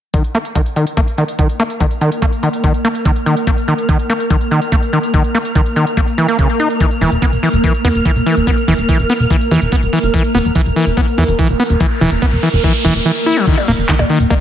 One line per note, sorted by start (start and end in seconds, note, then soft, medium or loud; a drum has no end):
0.14 0.23 D#3 medium
0.14 13.46 A#3 medium
0.14 13.46 A#4 medium
0.14 kick loud
0.14 closed hi-hat medium
0.24 closed hi-hat soft
0.35 0.38 A#3 loud
0.35 closed hi-hat medium
0.45 closed hi-hat soft
0.55 0.61 D#3 medium
0.55 kick loud
0.55 closed hi-hat loud
0.66 closed hi-hat soft
0.76 0.85 D#3 medium
0.76 closed hi-hat medium
0.87 closed hi-hat soft
0.97 1.01 A#3 loud
0.97 kick loud
0.97 closed hi-hat medium
1.08 closed hi-hat soft
1.18 1.24 D#3 medium
1.18 closed hi-hat soft
1.28 closed hi-hat soft
1.39 1.48 D#3 medium
1.39 kick loud
1.39 closed hi-hat medium
1.49 closed hi-hat soft
1.60 1.63 A#3 loud
1.60 closed hi-hat medium
1.70 closed hi-hat soft
1.80 1.86 D#3 medium
1.80 kick loud
1.80 closed hi-hat medium
1.91 closed hi-hat soft
2.01 2.10 D#3 medium
2.01 closed hi-hat medium
2.12 closed hi-hat soft
2.22 2.26 A#3 loud
2.22 kick loud
2.22 closed hi-hat medium
2.33 closed hi-hat soft
2.43 2.49 D#3 medium
2.43 closed hi-hat medium
2.53 closed hi-hat soft
2.64 2.73 D#3 medium
2.64 kick loud
2.64 closed hi-hat medium
2.74 closed hi-hat soft
2.85 2.88 A#3 loud
2.85 closed hi-hat soft
2.95 closed hi-hat soft
3.05 3.11 D#3 medium
3.05 kick loud
3.05 closed hi-hat medium
3.16 closed hi-hat soft
3.26 3.35 D#3 medium
3.26 closed hi-hat medium
3.37 closed hi-hat soft
3.47 3.51 A#3 loud
3.47 kick loud
3.47 closed hi-hat medium
3.58 closed hi-hat soft
3.68 3.74 D#3 medium
3.68 closed hi-hat medium
3.78 closed hi-hat soft
3.89 3.98 D#3 medium
3.89 kick loud
3.89 closed hi-hat medium
3.99 closed hi-hat soft
4.10 4.13 A#3 loud
4.10 closed hi-hat medium
4.20 closed hi-hat soft
4.30 4.36 D#3 medium
4.30 kick loud
4.30 closed hi-hat medium
4.41 closed hi-hat soft
4.51 4.60 D#3 medium
4.51 closed hi-hat soft
4.62 closed hi-hat soft
4.72 4.76 A#3 loud
4.72 kick loud
4.72 closed hi-hat medium
4.83 closed hi-hat soft
4.93 4.99 D#3 medium
4.93 closed hi-hat medium
5.03 closed hi-hat soft
5.14 5.23 D#3 medium
5.14 kick loud
5.14 closed hi-hat medium
5.24 closed hi-hat soft
5.35 5.38 A#3 loud
5.35 closed hi-hat medium
5.45 closed hi-hat soft
5.55 5.61 D#3 medium
5.55 kick loud
5.55 closed hi-hat medium
5.66 closed hi-hat soft
5.76 5.85 D#3 medium
5.76 closed hi-hat medium
5.87 closed hi-hat soft
5.97 6.01 A#3 loud
5.97 kick loud
5.97 closed hi-hat medium
6.08 closed hi-hat soft
6.18 6.27 E3 medium
6.18 closed hi-hat soft
6.28 6.37 A#3 medium
6.28 closed hi-hat soft
6.39 6.48 C#3 medium
6.39 kick loud
6.39 closed hi-hat medium
6.49 closed hi-hat soft
6.60 6.69 D#4 medium
6.60 closed hi-hat medium
6.70 closed hi-hat soft
6.80 6.86 E3 medium
6.80 kick loud
6.80 closed hi-hat medium
6.91 closed hi-hat soft
7.01 7.07 E1 medium
7.01 7.10 E3 medium
7.01 open hi-hat loud
7.12 7.18 E1 medium
7.12 closed hi-hat soft
7.22 7.26 B3 loud
7.22 kick loud
7.22 closed hi-hat medium
7.33 7.39 E1 medium
7.33 closed hi-hat soft
7.43 7.49 E3 medium
7.43 open hi-hat loud
7.53 7.60 E1 medium
7.53 closed hi-hat soft
7.64 7.73 E3 medium
7.64 kick loud
7.64 closed hi-hat medium
7.74 closed hi-hat soft
7.85 7.91 E2 medium
7.85 7.88 B3 loud
7.85 open hi-hat loud
7.95 8.01 E1 medium
7.95 closed hi-hat soft
8.05 8.11 E3 medium
8.05 kick loud
8.05 closed hi-hat medium
8.16 8.22 E1 medium
8.16 closed hi-hat soft
8.26 8.35 E3 medium
8.26 open hi-hat loud
8.37 8.43 E1 medium
8.37 closed hi-hat soft
8.47 8.51 B3 loud
8.47 kick loud
8.47 closed hi-hat medium
8.58 closed hi-hat soft
8.68 8.74 E1 medium
8.68 8.74 E3 medium
8.68 open hi-hat loud
8.78 8.85 E1 medium
8.78 closed hi-hat soft
8.89 8.98 E3 medium
8.89 kick loud
8.89 closed hi-hat medium
8.99 9.05 E1 medium
8.99 closed hi-hat soft
9.10 9.13 B3 loud
9.10 open hi-hat loud
9.20 9.26 E1 medium
9.20 closed hi-hat soft
9.30 9.36 E3 medium
9.30 kick loud
9.30 closed hi-hat medium
9.41 closed hi-hat soft
9.51 9.57 E2 medium
9.51 9.60 E3 medium
9.51 open hi-hat loud
9.62 9.68 E1 medium
9.62 closed hi-hat soft
9.72 9.76 B3 loud
9.72 kick loud
9.72 closed hi-hat medium
9.82 9.89 E1 medium
9.82 closed hi-hat soft
9.93 9.99 E3 medium
9.93 open hi-hat loud
10.03 10.10 E1 medium
10.03 closed hi-hat soft
10.14 10.23 E3 medium
10.14 kick loud
10.14 closed hi-hat medium
10.14 riser medium
10.24 closed hi-hat soft
10.35 10.41 E1 medium
10.35 10.38 B3 loud
10.35 open hi-hat loud
10.45 10.51 E1 medium
10.45 closed hi-hat soft
10.55 10.61 E3 medium
10.55 kick loud
10.55 closed hi-hat medium
10.66 10.72 E1 medium
10.66 closed hi-hat soft
10.76 10.85 E3 medium
10.76 open hi-hat loud
10.87 10.93 E1 medium
10.87 closed hi-hat soft
10.97 11.01 B3 loud
10.97 kick loud
10.97 closed hi-hat medium
11.08 closed hi-hat soft
11.18 11.24 E2 medium
11.18 11.24 E3 medium
11.18 open hi-hat loud
11.28 11.35 E1 medium
11.28 closed hi-hat soft
11.39 11.48 E3 medium
11.39 kick loud
11.39 closed hi-hat loud
11.49 11.55 E1 medium
11.49 closed hi-hat soft
11.60 11.63 B3 loud
11.60 open hi-hat loud
11.70 11.76 E1 medium
11.70 closed hi-hat soft
11.80 11.86 E3 medium
11.80 kick loud
11.80 closed hi-hat medium
11.91 open hi-hat medium
12.01 12.07 E1 medium
12.01 12.10 E3 medium
12.01 open hi-hat loud
12.12 12.18 E1 medium
12.12 closed hi-hat soft
12.22 12.26 B3 loud
12.22 kick loud
12.22 closed hi-hat loud
12.33 12.39 E1 medium
12.33 closed hi-hat soft
12.43 12.49 E3 medium
12.43 open hi-hat loud
12.53 12.60 E1 medium
12.53 closed hi-hat soft
12.64 12.73 E3 medium
12.64 kick loud
12.64 closed hi-hat medium
12.74 closed hi-hat soft
12.85 12.91 E1 medium
12.85 12.94 E3 loud
12.85 open hi-hat loud
12.95 13.01 E1 medium
12.95 closed hi-hat soft
13.05 13.11 E3 loud
13.05 closed hi-hat loud
13.16 closed hi-hat soft
13.26 13.38 E4 loud
13.26 open hi-hat loud
13.37 13.46 F#3 medium
13.37 closed hi-hat soft
13.47 13.56 D#3 medium
13.47 14.40 A#3 medium
13.47 14.40 A#4 medium
13.47 kick loud
13.47 closed hi-hat medium
13.47 crash medium
13.58 closed hi-hat soft
13.58 percussion blips soft
13.68 13.74 D#1 medium
13.68 13.72 A#3 loud
13.68 open hi-hat loud
13.78 13.85 D#1 medium
13.78 closed hi-hat soft
13.89 13.95 D#3 medium
13.89 kick loud
13.89 clap loud
13.89 closed hi-hat loud
13.99 14.05 D#1 medium
13.99 closed hi-hat soft
13.99 percussion blips medium
14.10 14.19 D#3 medium
14.10 open hi-hat medium
14.20 14.26 D#1 medium
14.20 closed hi-hat soft
14.30 14.34 A#3 loud
14.30 kick loud
14.30 closed hi-hat medium
14.30 percussion blips soft